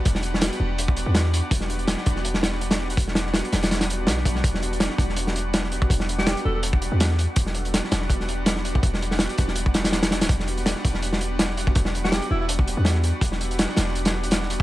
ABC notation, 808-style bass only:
X:1
M:4/4
L:1/16
Q:"Swing 16ths" 1/4=164
K:Em
V:1 name="808-style bass" clef=bass
E,,,4- E,,, z E,,,4- E,,, E,,4 z | E,,,4- E,,, z E,,,8- E,,,2 | E,,,4- E,,, z E,,,6 B,,,4 | E,,,4- E,,, z E,,,8- E,,,2 |
E,,,4- E,,, z E,,,4- E,,, E,,4 z | E,,,4- E,,, z E,,,8- E,,,2 | E,,,4- E,,, z E,,,8- E,,, D,,, | E,,,4- E,,, z E,,,8- E,,,2 |
E,,,4- E,,, z E,,,4- E,,, E,,4 z | E,,,4- E,,, z E,,,8- E,,,2 |]